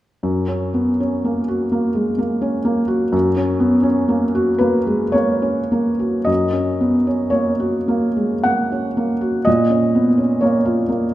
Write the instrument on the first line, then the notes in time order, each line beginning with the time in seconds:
felt piano
0.23 F#2
0.48 C#4
0.74 B3
1.00 C#4
1.25 A#3
1.48 F#4
1.72 A#3
1.95 G#3
2.18 A#3
2.41 C#4
2.65 A#3
2.88 F#4
3.12 F#2
3.37 C#4
3.60 B3
3.83 C#4
4.09 A#3
4.35 F#4
4.58 A#3 B4
4.87 G#3
5.12 A#3 C#5
5.42 C#4
5.72 A#3
5.99 F#4
6.25 F#2 D#5
6.53 C#4
6.81 B3
7.07 C#4
7.30 A#3 C#5
7.60 F#4
7.88 A#3
8.17 G#3
8.44 A#3 F#5
8.72 C#4
8.97 A#3
9.21 F#4
9.45 A#2 D#5
9.70 C#4
9.95 B3
10.18 C#4
10.41 A#3 C#5
10.65 F4
10.89 A#3